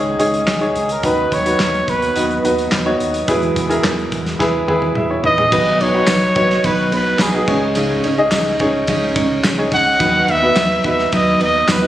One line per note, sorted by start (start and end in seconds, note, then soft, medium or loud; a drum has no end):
0.00 0.15 C#2 loud
0.00 1.06 G#2 medium
0.00 3.25 D#3 medium
0.00 1.02 G#3 medium
0.00 1.02 C#4 medium
0.00 0.19 D#4 medium
0.00 0.19 G#4 medium
0.00 1.04 B4 medium
0.00 0.20 C#5 medium
0.19 0.43 C#2 loud
0.19 0.54 D#4 medium
0.19 0.54 G#4 medium
0.19 0.54 C#5 medium
0.19 closed hi-hat medium
0.34 closed hi-hat soft
0.47 0.71 C#2 loud
0.47 0.93 G#4 medium
0.47 snare medium
0.47 clap medium
0.47 closed hi-hat medium
0.61 0.96 D#4 medium
0.61 0.96 G#4 medium
0.61 0.96 C#5 medium
0.61 closed hi-hat soft
0.75 0.99 C#2 medium
0.75 closed hi-hat medium
0.89 1.07 A#4 medium
0.89 closed hi-hat medium
1.03 1.27 D#2 loud
1.03 1.84 D#3 medium
1.03 3.26 F#3 medium
1.03 5.49 B3 medium
1.03 1.38 D#4 medium
1.03 1.38 F#4 medium
1.03 1.38 B4 medium
1.03 1.35 B4 medium
1.03 kick medium
1.03 closed hi-hat medium
1.32 1.55 D#2 medium
1.32 1.91 C#5 loud
1.32 kick medium
1.32 closed hi-hat medium
1.45 2.03 D#4 medium
1.45 2.03 F#4 medium
1.45 2.03 B4 medium
1.45 closed hi-hat medium
1.60 1.83 D#2 medium
1.60 snare loud
1.60 clap medium
1.60 closed hi-hat medium
1.74 closed hi-hat soft
1.88 2.11 D#2 medium
1.88 2.45 B4 medium
1.88 kick medium
1.88 closed hi-hat medium
2.02 closed hi-hat soft
2.16 2.39 D#2 medium
2.16 2.39 D#4 medium
2.16 2.39 F#4 medium
2.16 2.39 B4 medium
2.16 closed hi-hat medium
2.31 closed hi-hat soft
2.44 2.68 D#2 loud
2.44 2.78 D#4 medium
2.44 2.79 F#4 medium
2.44 2.79 B4 medium
2.44 closed hi-hat medium
2.58 closed hi-hat soft
2.72 2.96 D#2 medium
2.72 snare medium
2.72 clap medium
2.72 closed hi-hat medium
2.86 3.20 D#4 medium
2.86 3.20 F#4 medium
2.86 3.20 C#5 medium
3.00 3.23 D#2 loud
3.00 closed hi-hat medium
3.14 closed hi-hat medium
3.28 3.51 E2 loud
3.28 4.08 B2 medium
3.28 5.50 E3 medium
3.28 5.50 G#3 medium
3.28 3.62 E4 medium
3.28 3.62 G#4 medium
3.28 3.63 B4 medium
3.28 kick loud
3.28 closed hi-hat medium
3.42 closed hi-hat soft
3.56 3.79 E2 medium
3.56 kick medium
3.56 closed hi-hat medium
3.70 4.27 E4 medium
3.70 4.27 G#4 medium
3.70 4.27 A#4 medium
3.70 closed hi-hat medium
3.84 4.07 E2 medium
3.84 snare loud
3.84 clap medium
3.84 closed hi-hat medium
3.99 closed hi-hat soft
4.12 4.35 E2 loud
4.12 kick medium
4.12 closed hi-hat medium
4.26 snare soft
4.26 closed hi-hat soft
4.39 4.63 E2 medium
4.39 4.63 E4 medium
4.39 4.63 G#4 medium
4.39 4.63 B4 medium
4.39 kick medium
4.39 snare soft
4.68 4.91 E2 loud
4.68 4.96 E4 medium
4.68 4.96 G#4 medium
4.68 4.96 B4 medium
4.68 high tom medium
4.82 high tom medium
4.95 5.19 E2 medium
4.95 5.10 G#4 soft
4.95 5.10 E5 medium
4.95 mid tom medium
5.10 5.24 E4 medium
5.10 5.24 C#5 medium
5.23 5.47 E2 loud
5.23 5.37 D#4 medium
5.23 5.37 B4 medium
5.23 5.83 D#5 loud
5.23 floor tom medium
5.38 5.65 B3 soft
5.38 5.65 G#4 medium
5.38 floor tom medium
5.51 5.75 B1 loud
5.51 5.80 B2 medium
5.51 5.80 D#3 medium
5.51 5.80 F#3 medium
5.51 5.80 B3 medium
5.51 5.86 D#4 medium
5.51 5.80 D#4 medium
5.51 5.86 F#4 medium
5.51 5.86 B4 medium
5.51 5.79 B4 medium
5.51 kick loud
5.51 crash medium
5.80 6.03 B1 medium
5.80 6.07 F#3 soft
5.80 6.08 B3 soft
5.80 6.08 D#4 medium
5.80 6.08 B4 medium
5.80 6.67 C#5 loud
5.80 ride medium
5.93 6.28 D#4 medium
5.93 6.28 F#4 medium
5.93 6.28 B4 medium
6.07 6.31 B1 loud
6.07 6.36 F#3 medium
6.07 6.36 B3 medium
6.07 6.35 D#4 medium
6.07 6.35 B4 medium
6.07 snare loud
6.07 clap medium
6.07 ride medium
6.07 tambourine medium
6.35 6.59 B1 medium
6.35 6.63 F#3 soft
6.35 6.64 B3 medium
6.35 7.16 D#4 medium
6.35 6.64 D#4 medium
6.35 7.16 F#4 medium
6.35 6.64 B4 medium
6.35 7.16 C#5 medium
6.35 kick medium
6.35 ride soft
6.50 snare soft
6.64 6.87 B1 loud
6.64 6.92 B2 medium
6.64 6.93 D#3 medium
6.64 6.92 F#3 medium
6.64 6.92 B3 medium
6.64 6.91 D#4 medium
6.64 6.90 B4 loud
6.64 6.93 B4 medium
6.64 kick medium
6.64 ride medium
6.92 7.15 B1 loud
6.92 7.19 F#3 soft
6.92 7.20 B3 soft
6.92 7.20 D#4 medium
6.92 7.20 B4 medium
6.92 7.24 B4 medium
6.92 ride medium
7.19 7.43 B1 loud
7.19 7.48 F#3 medium
7.19 7.49 B3 medium
7.19 7.48 D#4 medium
7.19 7.63 G#4 medium
7.19 7.47 B4 medium
7.19 snare loud
7.19 clap medium
7.19 ride medium
7.19 tambourine medium
7.34 7.46 D#4 medium
7.34 7.48 F#4 medium
7.34 7.47 G#4 medium
7.48 7.94 C#2 loud
7.48 8.28 G#2 medium
7.48 7.75 C#4 soft
7.48 8.05 D#4 medium
7.48 7.76 D#4 soft
7.48 8.05 G#4 medium
7.48 7.76 C#5 medium
7.48 8.05 C#5 medium
7.48 kick medium
7.48 crash medium
7.75 8.04 C#3 medium
7.75 8.04 G#3 medium
7.75 8.04 C#4 medium
7.75 8.03 D#4 medium
7.75 8.02 C#5 medium
7.75 hi-hat pedal medium
7.75 ride medium
8.04 8.28 C#2 medium
8.04 8.30 C#4 soft
8.04 8.31 D#4 medium
8.04 8.32 C#5 medium
8.04 ride medium
8.18 8.52 D#4 medium
8.18 8.52 G#4 medium
8.18 8.53 D#5 loud
8.31 8.55 C#2 loud
8.31 8.60 G#3 medium
8.31 8.60 C#4 medium
8.31 8.60 D#4 medium
8.31 8.59 C#5 medium
8.31 snare loud
8.31 clap medium
8.31 ride medium
8.31 tambourine medium
8.59 8.83 C#2 medium
8.59 8.88 C#4 medium
8.59 9.40 D#4 medium
8.59 8.88 D#4 medium
8.59 9.40 G#4 medium
8.59 8.88 C#5 medium
8.59 9.40 C#5 medium
8.59 kick medium
8.59 ride medium
8.87 9.11 C#2 loud
8.87 9.16 C#3 medium
8.87 9.16 G#3 medium
8.87 9.16 C#4 medium
8.87 9.16 D#4 medium
8.87 9.15 C#5 medium
8.87 kick medium
8.87 ride medium
9.16 9.39 C#2 loud
9.16 9.44 C#4 soft
9.16 9.45 D#4 medium
9.16 9.44 C#5 medium
9.16 kick loud
9.16 ride medium
9.44 9.67 C#2 loud
9.44 9.72 G#3 medium
9.44 9.73 C#4 medium
9.44 9.72 D#4 medium
9.44 9.71 C#5 medium
9.44 snare loud
9.44 clap medium
9.44 ride medium
9.44 tambourine medium
9.58 9.92 D#4 medium
9.58 9.92 G#4 medium
9.58 9.93 C#5 medium
9.72 9.95 C#2 medium
9.72 10.00 C#4 soft
9.72 10.00 D#4 medium
9.72 10.00 C#5 medium
9.72 10.32 F#5 loud
9.72 kick medium
9.72 open hi-hat medium
9.72 ride medium
10.00 10.23 D#2 loud
10.00 10.80 D#3 medium
10.00 10.28 D#3 medium
10.00 10.28 F#3 medium
10.00 10.28 B3 medium
10.00 10.34 D#4 medium
10.00 10.28 D#4 medium
10.00 10.34 F#4 medium
10.00 10.34 B4 medium
10.00 10.27 B4 loud
10.00 kick loud
10.00 hi-hat pedal medium
10.00 ride medium
10.28 10.51 D#2 loud
10.28 10.55 B3 medium
10.28 10.55 D#4 medium
10.28 10.56 B4 medium
10.28 10.85 E5 loud
10.28 ride medium
10.42 10.76 B3 medium
10.42 10.77 F#4 medium
10.42 10.77 B4 medium
10.55 10.79 D#2 medium
10.55 10.84 F#3 medium
10.55 10.84 B3 medium
10.55 10.83 D#4 medium
10.55 10.82 B4 medium
10.55 snare loud
10.55 clap loud
10.55 ride medium
10.55 tambourine medium
10.83 11.07 D#2 medium
10.83 11.11 B3 medium
10.83 11.12 D#4 medium
10.83 11.64 D#4 medium
10.83 11.64 F#4 medium
10.83 11.12 B4 medium
10.83 11.65 B4 medium
10.83 11.12 E5 loud
10.83 kick medium
10.83 ride medium
10.99 snare soft
11.12 11.36 D#2 loud
11.12 11.40 D#3 medium
11.12 11.40 F#3 medium
11.12 11.40 B3 medium
11.12 11.39 D#4 medium
11.12 11.38 B4 loud
11.12 11.40 D#5 medium
11.12 kick medium
11.12 ride medium
11.40 11.63 D#2 loud
11.40 11.67 B3 soft
11.40 11.67 D#4 medium
11.40 11.68 B4 medium
11.40 ride medium
11.44 11.73 D#5 loud
11.67 11.87 D#2 loud
11.67 11.87 F#3 medium
11.67 11.87 B3 medium
11.67 11.87 D#4 medium
11.67 11.87 B4 medium
11.67 snare loud
11.67 clap medium
11.67 ride medium
11.67 tambourine medium
11.71 11.87 B4 medium
11.82 11.87 D#4 medium
11.82 11.87 F#4 medium
11.82 11.87 B4 medium